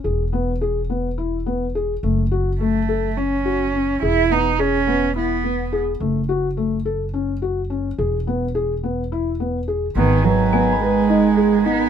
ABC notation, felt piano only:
X:1
M:7/8
L:1/8
Q:1/4=106
K:E
V:1 name="Felt piano"
G B, G B, E B, G | A, F A, A C F C | G B, G B, E B, G | A, F A, A C F C |
G B, G B, E B, G | B, B B, B D G D |]